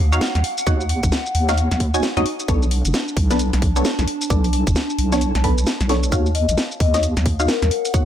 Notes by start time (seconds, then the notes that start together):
Already playing: D#2 F5 F#5
0.12 D#4 F#4 C#5 F5, shaker
0.21 snare, shaker
0.35 D#2, snare, closed hi-hat, shaker
0.44 open hi-hat
0.58 open hi-hat, shaker
0.67 D#2 D#4 F#4 C#5 F#5, kick, closed hi-hat, shaker
0.81 shaker
0.89 open hi-hat
1.03 A#1, kick, closed hi-hat, shaker
1.12 snare, shaker
1.26 shaker
1.35 D#2, open hi-hat
1.49 D#4 F#4 C#5 F5, snare, closed hi-hat, shaker
1.58 closed hi-hat, shaker
1.72 D#2, snare, closed hi-hat, shaker
1.80 kick, open hi-hat
1.94 D#4 F#4 C#5 G#5, shaker
2.03 snare, shaker
2.17 D#2 D#4 F#4 C#5 D#5, snare, closed hi-hat, shaker
2.26 D4, open hi-hat
2.40 closed hi-hat, shaker
2.44 A5
2.48 B1 B3 D4 A4 C#5, kick, closed hi-hat, shaker
2.62 shaker
2.71 open hi-hat
2.85 F#1, closed hi-hat, shaker
2.94 snare, shaker
3.08 shaker
3.17 B1, kick, open hi-hat
3.31 B3 D4 A4 B4, snare, closed hi-hat, shaker
3.39 closed hi-hat, shaker
3.53 B1, snare, closed hi-hat, shaker
3.62 kick, open hi-hat
3.76 B3 D4 A4 C#5, shaker
3.85 snare, shaker
3.99 B1, snare, closed hi-hat, shaker
4.08 open hi-hat
4.22 open hi-hat, shaker
4.30 B1 B3 D4 A4 D5, kick, closed hi-hat, shaker
4.44 open hi-hat, shaker
4.53 open hi-hat
4.67 F#1, kick, closed hi-hat, shaker
4.76 snare, shaker
4.90 shaker
4.99 B1, open hi-hat
5.12 B3 D4 A4 C#5, snare, closed hi-hat, shaker
5.21 closed hi-hat, shaker
5.35 B1, snare, closed hi-hat, shaker
5.44 B3 D4 A4 B4, kick, open hi-hat
5.58 shaker
5.67 snare, shaker
5.81 B1, snare, closed hi-hat, shaker
5.89 B3 D4 A4 C#5, snare, open hi-hat
6.03 closed hi-hat, shaker
6.12 D#2 D#4 F#4 C#5 F5, kick, closed hi-hat, shaker
6.26 shaker
6.33 C#5 D#5, open hi-hat
6.49 A#1, closed hi-hat, shaker
6.58 snare, shaker
6.71 shaker
6.80 D#2 D#5 F#5, kick, open hi-hat
6.94 D#4 F#4 C#5 D#5, snare, closed hi-hat, shaker
7.03 closed hi-hat, shaker
7.17 D#2, snare, closed hi-hat, shaker
7.26 kick, open hi-hat
7.40 D#4 F#4 C#5 F5, shaker
7.48 A#4, snare, shaker
7.62 D#2, snare, closed hi-hat, shaker
7.71 open hi-hat
7.85 open hi-hat, shaker
7.94 D#2 D#4 F#4 C#5 F#5, kick, closed hi-hat, shaker